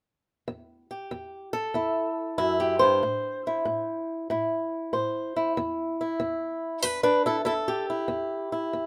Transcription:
0, 0, Header, 1, 2, 480
1, 0, Start_track
1, 0, Key_signature, 1, "minor"
1, 0, Tempo, 634921
1, 360, Time_signature, 4, 2, 24, 8
1, 6701, End_track
2, 0, Start_track
2, 0, Title_t, "Steel-string acoustic guitar"
2, 0, Program_c, 0, 25
2, 360, Note_on_c, 0, 40, 72
2, 686, Note_on_c, 0, 67, 48
2, 808, Note_off_c, 0, 40, 0
2, 840, Note_on_c, 0, 40, 68
2, 1154, Note_off_c, 0, 67, 0
2, 1157, Note_on_c, 0, 69, 86
2, 1288, Note_off_c, 0, 40, 0
2, 1317, Note_on_c, 0, 40, 63
2, 1323, Note_on_c, 0, 64, 42
2, 1766, Note_off_c, 0, 40, 0
2, 1798, Note_on_c, 0, 42, 62
2, 1800, Note_off_c, 0, 64, 0
2, 1800, Note_on_c, 0, 64, 82
2, 1958, Note_off_c, 0, 69, 0
2, 1965, Note_on_c, 0, 67, 66
2, 2109, Note_off_c, 0, 64, 0
2, 2112, Note_on_c, 0, 72, 83
2, 2122, Note_off_c, 0, 42, 0
2, 2129, Note_on_c, 0, 43, 63
2, 2281, Note_off_c, 0, 67, 0
2, 2282, Note_off_c, 0, 43, 0
2, 2289, Note_on_c, 0, 45, 68
2, 2623, Note_on_c, 0, 64, 51
2, 2732, Note_off_c, 0, 45, 0
2, 2762, Note_on_c, 0, 45, 69
2, 3209, Note_off_c, 0, 45, 0
2, 3250, Note_on_c, 0, 45, 74
2, 3253, Note_off_c, 0, 64, 0
2, 3256, Note_on_c, 0, 64, 42
2, 3693, Note_off_c, 0, 45, 0
2, 3714, Note_off_c, 0, 72, 0
2, 3726, Note_on_c, 0, 45, 68
2, 3729, Note_on_c, 0, 72, 47
2, 4053, Note_off_c, 0, 64, 0
2, 4056, Note_on_c, 0, 64, 48
2, 4170, Note_off_c, 0, 45, 0
2, 4185, Note_off_c, 0, 72, 0
2, 4212, Note_on_c, 0, 40, 80
2, 4542, Note_off_c, 0, 64, 0
2, 4542, Note_on_c, 0, 64, 48
2, 4654, Note_off_c, 0, 40, 0
2, 4684, Note_on_c, 0, 40, 75
2, 5130, Note_off_c, 0, 40, 0
2, 5156, Note_on_c, 0, 62, 66
2, 5159, Note_off_c, 0, 64, 0
2, 5159, Note_on_c, 0, 71, 82
2, 5165, Note_on_c, 0, 40, 67
2, 5307, Note_off_c, 0, 71, 0
2, 5309, Note_off_c, 0, 62, 0
2, 5317, Note_on_c, 0, 62, 75
2, 5318, Note_on_c, 0, 71, 83
2, 5477, Note_off_c, 0, 71, 0
2, 5478, Note_off_c, 0, 62, 0
2, 5487, Note_on_c, 0, 64, 69
2, 5494, Note_on_c, 0, 69, 78
2, 5563, Note_off_c, 0, 64, 0
2, 5610, Note_off_c, 0, 40, 0
2, 5629, Note_off_c, 0, 69, 0
2, 5632, Note_on_c, 0, 64, 78
2, 5638, Note_on_c, 0, 40, 73
2, 5642, Note_on_c, 0, 69, 83
2, 5687, Note_off_c, 0, 64, 0
2, 5806, Note_on_c, 0, 67, 74
2, 5963, Note_off_c, 0, 69, 0
2, 5971, Note_on_c, 0, 64, 49
2, 6087, Note_off_c, 0, 40, 0
2, 6108, Note_on_c, 0, 40, 73
2, 6440, Note_off_c, 0, 64, 0
2, 6443, Note_on_c, 0, 64, 51
2, 6562, Note_off_c, 0, 40, 0
2, 6602, Note_on_c, 0, 40, 62
2, 6701, Note_off_c, 0, 40, 0
2, 6701, Note_off_c, 0, 64, 0
2, 6701, Note_off_c, 0, 67, 0
2, 6701, End_track
0, 0, End_of_file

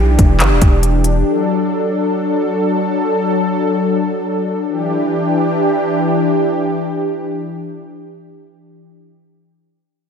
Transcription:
0, 0, Header, 1, 5, 480
1, 0, Start_track
1, 0, Key_signature, 1, "minor"
1, 0, Tempo, 500000
1, 9692, End_track
2, 0, Start_track
2, 0, Title_t, "Analog synth pad"
2, 0, Program_c, 0, 89
2, 0, Note_on_c, 0, 52, 82
2, 0, Note_on_c, 0, 62, 78
2, 0, Note_on_c, 0, 67, 95
2, 1174, Note_off_c, 0, 67, 0
2, 1175, Note_off_c, 0, 52, 0
2, 1207, Note_on_c, 0, 54, 83
2, 1207, Note_on_c, 0, 69, 93
2, 4461, Note_off_c, 0, 62, 0
2, 4466, Note_off_c, 0, 54, 0
2, 4466, Note_off_c, 0, 69, 0
2, 4500, Note_on_c, 0, 52, 82
2, 4500, Note_on_c, 0, 62, 78
2, 4500, Note_on_c, 0, 67, 92
2, 8521, Note_off_c, 0, 52, 0
2, 8521, Note_off_c, 0, 62, 0
2, 8521, Note_off_c, 0, 67, 0
2, 9692, End_track
3, 0, Start_track
3, 0, Title_t, "808-style bass"
3, 0, Program_c, 1, 38
3, 0, Note_on_c, 1, 35, 94
3, 169, Note_off_c, 1, 35, 0
3, 179, Note_on_c, 1, 28, 101
3, 385, Note_on_c, 1, 31, 103
3, 399, Note_off_c, 1, 28, 0
3, 488, Note_on_c, 1, 28, 102
3, 502, Note_off_c, 1, 31, 0
3, 586, Note_off_c, 1, 28, 0
3, 591, Note_on_c, 1, 28, 105
3, 1183, Note_off_c, 1, 28, 0
3, 9692, End_track
4, 0, Start_track
4, 0, Title_t, "Downlifter"
4, 0, Program_c, 2, 103
4, 0, Note_on_c, 2, 60, 86
4, 1208, Note_off_c, 2, 60, 0
4, 9692, End_track
5, 0, Start_track
5, 0, Title_t, "Drums"
5, 179, Note_on_c, 9, 36, 92
5, 180, Note_on_c, 9, 42, 72
5, 275, Note_off_c, 9, 36, 0
5, 276, Note_off_c, 9, 42, 0
5, 385, Note_on_c, 9, 39, 123
5, 386, Note_on_c, 9, 42, 77
5, 481, Note_off_c, 9, 39, 0
5, 482, Note_off_c, 9, 42, 0
5, 591, Note_on_c, 9, 36, 94
5, 591, Note_on_c, 9, 42, 78
5, 687, Note_off_c, 9, 36, 0
5, 687, Note_off_c, 9, 42, 0
5, 797, Note_on_c, 9, 42, 69
5, 893, Note_off_c, 9, 42, 0
5, 1002, Note_on_c, 9, 42, 71
5, 1098, Note_off_c, 9, 42, 0
5, 9692, End_track
0, 0, End_of_file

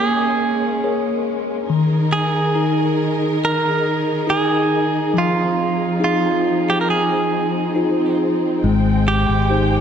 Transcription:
0, 0, Header, 1, 5, 480
1, 0, Start_track
1, 0, Key_signature, -4, "minor"
1, 0, Tempo, 859599
1, 944, Time_signature, 4, 2, 24, 8
1, 2389, Tempo, 872093
1, 5431, End_track
2, 0, Start_track
2, 0, Title_t, "Clean electric guitar"
2, 0, Program_c, 0, 27
2, 0, Note_on_c, 0, 68, 65
2, 682, Note_off_c, 0, 68, 0
2, 1187, Note_on_c, 0, 68, 75
2, 1886, Note_off_c, 0, 68, 0
2, 1925, Note_on_c, 0, 70, 79
2, 2398, Note_off_c, 0, 70, 0
2, 2401, Note_on_c, 0, 68, 75
2, 2887, Note_on_c, 0, 65, 72
2, 2888, Note_off_c, 0, 68, 0
2, 3354, Note_off_c, 0, 65, 0
2, 3360, Note_on_c, 0, 65, 66
2, 3721, Note_on_c, 0, 67, 61
2, 3722, Note_off_c, 0, 65, 0
2, 3780, Note_off_c, 0, 67, 0
2, 3782, Note_on_c, 0, 70, 46
2, 3823, Note_off_c, 0, 70, 0
2, 3833, Note_on_c, 0, 68, 64
2, 4533, Note_off_c, 0, 68, 0
2, 5031, Note_on_c, 0, 67, 69
2, 5431, Note_off_c, 0, 67, 0
2, 5431, End_track
3, 0, Start_track
3, 0, Title_t, "Tine electric piano"
3, 0, Program_c, 1, 4
3, 0, Control_c, 1, 64, 127
3, 0, Note_on_c, 1, 58, 50
3, 0, Note_on_c, 1, 68, 39
3, 0, Note_on_c, 1, 70, 35
3, 0, Note_on_c, 1, 73, 41
3, 468, Note_off_c, 1, 68, 0
3, 468, Note_on_c, 1, 68, 40
3, 470, Note_off_c, 1, 70, 0
3, 470, Note_off_c, 1, 73, 0
3, 470, Note_on_c, 1, 70, 37
3, 470, Note_on_c, 1, 73, 46
3, 921, Note_off_c, 1, 58, 0
3, 931, Note_off_c, 1, 68, 0
3, 932, Note_off_c, 1, 70, 0
3, 932, Note_off_c, 1, 73, 0
3, 948, Note_on_c, 1, 51, 56
3, 951, Control_c, 1, 64, 0
3, 1040, Control_c, 1, 64, 127
3, 1424, Note_on_c, 1, 63, 42
3, 1426, Note_on_c, 1, 68, 37
3, 1428, Note_on_c, 1, 70, 43
3, 1892, Note_off_c, 1, 63, 0
3, 1893, Note_off_c, 1, 68, 0
3, 1894, Note_off_c, 1, 70, 0
3, 2385, Note_on_c, 1, 63, 40
3, 2387, Note_on_c, 1, 68, 37
3, 2388, Note_on_c, 1, 70, 42
3, 2848, Note_off_c, 1, 51, 0
3, 2852, Note_off_c, 1, 63, 0
3, 2853, Note_off_c, 1, 68, 0
3, 2853, Note_off_c, 1, 70, 0
3, 2862, Note_on_c, 1, 53, 52
3, 2874, Control_c, 1, 64, 0
3, 2963, Control_c, 1, 64, 127
3, 3336, Note_on_c, 1, 63, 38
3, 3340, Note_on_c, 1, 65, 37
3, 3342, Note_on_c, 1, 68, 42
3, 3805, Note_off_c, 1, 63, 0
3, 3807, Note_off_c, 1, 65, 0
3, 3808, Note_off_c, 1, 68, 0
3, 4298, Note_on_c, 1, 63, 38
3, 4305, Note_on_c, 1, 65, 33
3, 4305, Note_on_c, 1, 68, 41
3, 4766, Note_off_c, 1, 53, 0
3, 4771, Note_off_c, 1, 63, 0
3, 4775, Note_off_c, 1, 65, 0
3, 4775, Note_off_c, 1, 68, 0
3, 4788, Note_on_c, 1, 56, 52
3, 4798, Control_c, 1, 64, 0
3, 4880, Control_c, 1, 64, 127
3, 5262, Note_on_c, 1, 67, 38
3, 5268, Note_on_c, 1, 63, 35
3, 5268, Note_on_c, 1, 72, 43
3, 5431, Note_off_c, 1, 56, 0
3, 5431, Note_off_c, 1, 63, 0
3, 5431, Note_off_c, 1, 67, 0
3, 5431, Note_off_c, 1, 72, 0
3, 5431, End_track
4, 0, Start_track
4, 0, Title_t, "String section"
4, 0, Program_c, 2, 48
4, 0, Note_on_c, 2, 56, 54
4, 0, Note_on_c, 2, 58, 52
4, 0, Note_on_c, 2, 61, 65
4, 921, Note_off_c, 2, 58, 0
4, 921, Note_off_c, 2, 61, 0
4, 922, Note_off_c, 2, 56, 0
4, 945, Note_on_c, 2, 70, 68
4, 948, Note_on_c, 2, 63, 55
4, 949, Note_on_c, 2, 51, 58
4, 949, Note_on_c, 2, 68, 53
4, 2850, Note_off_c, 2, 70, 0
4, 2851, Note_off_c, 2, 51, 0
4, 2865, Note_on_c, 2, 60, 53
4, 2868, Note_on_c, 2, 53, 56
4, 4771, Note_off_c, 2, 63, 0
4, 4771, Note_off_c, 2, 68, 0
4, 4772, Note_off_c, 2, 53, 0
4, 4789, Note_on_c, 2, 56, 58
4, 4791, Note_on_c, 2, 79, 63
4, 5431, Note_off_c, 2, 56, 0
4, 5431, Note_off_c, 2, 60, 0
4, 5431, Note_off_c, 2, 79, 0
4, 5431, End_track
5, 0, Start_track
5, 0, Title_t, "Fingered electric bass"
5, 0, Program_c, 3, 33
5, 4788, Note_on_c, 3, 32, 85
5, 5128, Note_off_c, 3, 32, 0
5, 5149, Note_on_c, 3, 32, 67
5, 5431, Note_off_c, 3, 32, 0
5, 5431, End_track
0, 0, End_of_file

